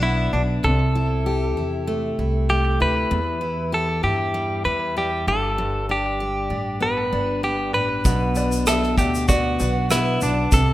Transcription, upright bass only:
0.00 0.29 B1 medium
0.33 0.61 B1 medium
0.64 1.57 C2 medium
1.57 2.14 E2 medium
2.19 2.76 C2 medium
2.81 3.09 D2 medium
3.11 4.00 E2 medium
4.03 4.61 G2 medium
4.65 5.23 E2 medium
5.27 6.47 G1 medium
6.50 7.08 A1 medium
7.12 7.74 G1 medium
7.74 8.03 A1 medium
8.05 8.94 B1 medium
8.98 9.56 D2 medium
9.60 10.18 B1 medium
10.22 10.50 B1 medium
10.52 10.73 C2 medium

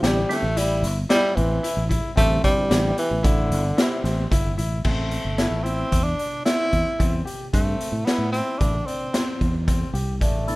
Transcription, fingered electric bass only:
0.03 0.24 A1 medium
0.43 0.84 A1 medium
0.83 1.04 G1 medium
1.37 1.58 A1 medium
1.77 1.98 A1 medium
2.17 2.38 A1 loud
2.71 2.92 A1 medium
3.11 3.52 A1 medium
3.50 3.71 G1 medium
4.04 4.25 A1 medium
4.31 4.55 G1 medium
4.58 4.82 A1 medium
4.85 5.17 A1 medium
5.25 5.46 G1 medium
5.51 5.83 A1 medium
5.92 6.13 E2 medium
6.73 6.83 E2 medium
7.00 7.21 E2 medium
7.54 7.75 G2 medium
7.92 8.03 A2 medium
8.18 8.40 A2 medium
8.61 8.82 A1 medium
9.41 9.83 E2 medium
9.93 10.21 C2 medium
10.21 10.53 A1 medium

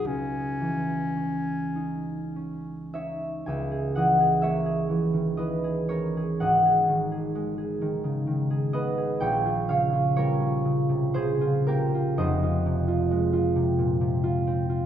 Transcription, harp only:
0.00 1.74 D#4 soft
0.04 3.47 C#2 soft
0.60 3.51 E3 soft
1.17 2.35 C#4 soft
1.76 2.93 D#4 soft
2.36 5.89 C#4 soft
2.94 3.51 D#4 soft
2.94 4.42 C#5 soft
2.94 3.47 E5 medium
3.46 6.45 C#2 soft
3.46 4.41 E5 medium
3.46 7.36 G#5 medium
3.72 4.19 G#4 soft
3.95 4.88 E3 soft
3.95 5.36 D#5 medium
3.95 4.75 F#5 medium
4.20 4.64 G#4 soft
4.42 6.46 A#3 soft
4.42 5.88 C#5 medium
4.42 6.45 E5 medium
4.66 5.63 G#4 soft
4.89 5.37 E3 soft
5.13 5.57 D#3 soft
5.37 6.45 E3 soft
5.37 8.73 B4 medium
5.37 6.26 D#5 medium
5.64 6.16 G#4 soft
5.89 6.45 C#4 soft
5.89 6.45 A#4 medium
5.89 6.44 C#5 medium
6.17 6.64 G#4 soft
6.40 9.26 G#1 soft
6.40 8.72 D#5 medium
6.40 9.26 F#5 medium
6.65 7.10 G#4 soft
6.89 7.80 D#3 soft
7.12 7.57 G#4 soft
7.35 9.27 G#3 soft
7.58 8.49 G#4 soft
7.81 8.26 D#3 soft
8.04 8.44 C#3 soft
8.27 9.26 D#3 soft
8.50 8.96 G#4 soft
8.73 9.26 B3 soft
8.73 9.26 B4 medium
8.73 9.25 D#5 medium
8.98 9.26 G#4 soft
9.20 12.21 A#1 medium
9.20 9.69 C#5 medium
9.20 12.21 G5 medium
9.46 9.92 F4 soft
9.69 10.64 C#3 soft
9.69 10.15 C#5 medium
9.69 13.59 F5 medium
9.93 10.39 F4 soft
10.16 12.22 G3 soft
10.16 11.65 A#4 medium
10.16 12.22 C#5 medium
10.40 11.40 F4 soft
10.65 11.14 C#3 soft
10.89 11.32 C3 soft
11.14 12.22 C#3 soft
11.14 14.86 G#4 medium
11.14 12.03 C5 medium
11.41 11.93 F4 medium
11.67 12.22 A#3 medium
11.67 12.22 G4 medium
11.67 12.22 A#4 medium
11.95 12.42 F4 medium
12.17 14.86 F1 medium
12.17 14.86 F2 medium
12.17 14.86 C5 medium
12.17 14.86 D#5 medium
12.43 12.87 F4 soft
12.66 13.54 C3 soft
12.88 13.32 F4 medium
13.11 14.86 G#3 medium
13.33 14.22 F4 medium
13.56 14.00 C3 medium
13.79 14.16 A#2 soft
14.01 14.86 C3 soft
14.24 14.68 F4 medium
14.47 14.86 C4 medium
14.69 14.86 F4 medium

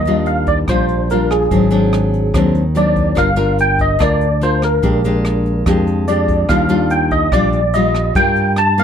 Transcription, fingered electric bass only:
0.00 0.64 D#2 medium
0.68 1.47 A#1 medium
1.51 2.30 G#1 medium
2.34 3.13 D#2 medium
3.17 3.96 G1 loud
4.00 4.79 D2 medium
4.84 5.62 A#1 medium
5.66 6.45 F2 medium
6.49 7.28 D#2 loud
7.32 8.11 A#1 medium
8.15 8.84 G2 loud

